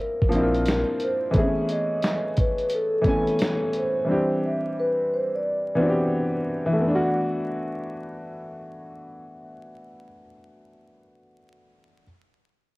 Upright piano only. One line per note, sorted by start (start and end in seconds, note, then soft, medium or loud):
0.00 0.29 F3 medium
0.00 0.30 A#3 medium
0.00 0.32 C4 medium
0.00 0.34 D4 medium
0.00 0.36 E4 medium
0.29 0.97 F3 medium
0.29 0.98 A#3 medium
0.29 0.99 C4 medium
0.34 1.00 D4 medium
0.34 0.42 E4 medium
0.42 1.04 F4 medium
1.31 2.25 E3 medium
1.31 2.26 A3 medium
1.31 2.27 B3 medium
1.37 1.44 C4 soft
1.37 2.29 G#4 medium
1.43 2.31 C#4 medium
3.02 3.70 E3 medium
3.02 3.71 A3 medium
3.02 3.72 B3 medium
3.07 3.73 C#4 medium
3.07 3.73 G#5 medium
4.04 4.98 E3 medium
4.04 4.99 G3 soft
4.04 5.00 C4 medium
4.09 5.00 D4 medium
4.09 5.01 G4 medium
5.75 6.43 E3 medium
5.75 6.44 B3 medium
5.75 6.45 C4 medium
5.80 6.46 D4 medium
5.80 5.88 F#4 medium
5.89 6.50 G4 medium
6.66 10.04 E3 medium
6.73 10.11 A3 medium
6.81 10.19 B3 medium
6.88 10.26 D4 medium
6.95 10.33 F#4 medium